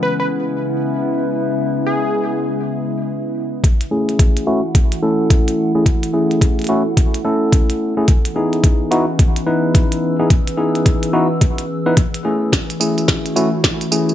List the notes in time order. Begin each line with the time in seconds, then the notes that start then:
Already playing: C#3 E3 G#3 B3 C#4 E4 B4 F#5
0.03 B4
0.20 B4
0.25 E5
1.87 G#4
3.64 E3 A3 C#4 E4 F#4, kick, closed hi-hat
3.81 closed hi-hat
3.91 A3 C#4 E4 G#4 F#5
4.09 closed hi-hat
4.19 kick, closed hi-hat
4.37 closed hi-hat
4.47 A3 C#4 E4 F#4
4.58 A4
4.75 kick, closed hi-hat
4.92 closed hi-hat
5.02 A3 C#4 E4 A4
5.30 kick, closed hi-hat
5.48 closed hi-hat
5.75 A3 C#4 E4 G#4
5.85 B3, kick, closed hi-hat
6.03 closed hi-hat
6.13 A3 C#4 E4 G#4
6.31 closed hi-hat
6.41 kick, closed hi-hat
6.59 closed hi-hat
6.62 closed hi-hat
6.64 closed hi-hat
6.67 A3 C#4 E4 F#4, closed hi-hat
6.97 kick, closed hi-hat
7.14 closed hi-hat
7.25 A3 C#4 E4 A4
7.53 kick, closed hi-hat
7.70 closed hi-hat
7.97 A3 C#4 E4 G#4
8.08 E3 C#4 G#4, kick, closed hi-hat
8.25 closed hi-hat
8.36 B3 D#4 E4 G#4 B4
8.53 closed hi-hat
8.64 kick, closed hi-hat
8.91 B3 D#4 E4 F#4, closed hi-hat
9.19 kick, closed hi-hat
9.36 closed hi-hat
9.46 B3 D#4 E4 B4 E6
9.75 kick, closed hi-hat
9.92 closed hi-hat
10.19 B3 D#4 E4 G#4
10.30 C#4, kick, closed hi-hat
10.47 closed hi-hat
10.57 B3 D#4 E4 G#4
10.75 closed hi-hat
10.86 kick, closed hi-hat
11.03 closed hi-hat
11.13 B3 D#4 E4 F#4
11.41 kick, closed hi-hat
11.58 closed hi-hat
11.86 B3 D#4 E4 B4
11.97 kick, closed hi-hat
12.14 closed hi-hat
12.25 A3 C#4 E4 G#4
12.52 A3 C#4 E4 F#4, kick, snare, closed hi-hat, tambourine
12.70 closed hi-hat, tambourine
12.80 A3 C#4 E4 G#4, tambourine
12.98 closed hi-hat, tambourine
13.08 A3, kick, snare, closed hi-hat, tambourine
13.26 closed hi-hat, tambourine
13.36 A3 C#4 E4 F#4, tambourine
13.64 kick, snare, closed hi-hat, tambourine
13.81 closed hi-hat, tambourine
13.92 A3 C#4 E4 G#4, tambourine
14.09 tambourine